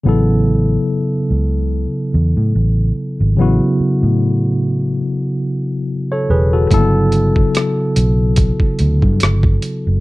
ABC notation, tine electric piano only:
X:1
M:4/4
L:1/16
Q:"Swing 16ths" 1/4=72
K:A
V:1 name="Tine electric piano"
z16 | z12 z [Ac] [GB] [FA]- | [FA] z12 z3 |]
V:2 name="Tine electric piano"
[C,F,B,EA]16 | [C,F,B,EF]16 | [C,F,_B,=B,EA]16 |]